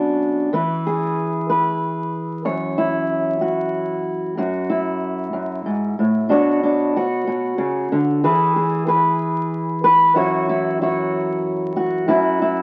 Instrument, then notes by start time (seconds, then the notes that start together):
steel-string acoustic guitar
Already playing: B2 F#3 C#4 D4 F#4
0.53 E3 B4
0.87 G#4
1.50 B4
2.45 F#2 C#5
2.78 E4
3.41 F#4
4.37 F#2 F#4
4.70 E4
5.33 F#2
5.66 G#2
5.99 A2
6.29 B2 D4 F#4 C#5
6.63 D4
6.96 F#4 C#5
7.27 B2
7.58 C#3
7.92 D3
8.24 E3 G#4 B4
8.56 G#4
8.87 G#4 B4
9.84 B4
10.15 F#2 E4 F#4 C#5
10.49 E4
10.82 E4 F#4 C#5
11.76 F#4
12.08 F#2 E4 F#4
12.42 E4